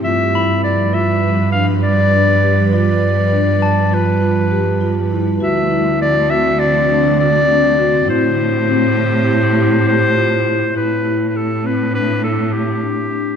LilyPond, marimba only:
\new Staff \with { instrumentName = "Marimba" } { \time 9/8 \key g \mixolydian \tempo 4. = 67 f'8 e'4 f'4 d'4 d'8 g'8 | f'4 d'4 f'8 f'8 g'8 f'8 e'8 | fis'8 e'4 fis'4 d'4 d'8 fis'8 | e'4 c'4 e'8 e'8 g'8 f'8 e'8 |
e'8 e'4 c'8 d'8 e'4 d'8 d'8 | }